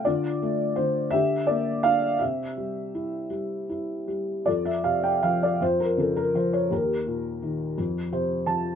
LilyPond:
<<
  \new Staff \with { instrumentName = "Felt piano" } { \time 6/8 \key f \major \tempo 4. = 55 << { d''4 c''8 e''8 d''8 f''8 | e''4. r4. | d''16 e''16 f''16 g''16 f''16 d''16 c''16 bes'16 a'16 bes'16 c''16 cis''16 | bes'4. r8 c''8 a''8 | } \\ { f'4. g'4. | g'4. r4. | a'4. f'4. | g'4. r4. | } >> }
  \new Staff \with { instrumentName = "Felt piano" } { \clef bass \time 6/8 \key f \major d8 a8 d8 d8 bes8 d'8 | c8 g8 e'8 g8 e'8 g8 | f,8 c8 f8 f,8 cis8 f8 | ees,8 bes,8 ees8 f,8 c8 f8 | }
>>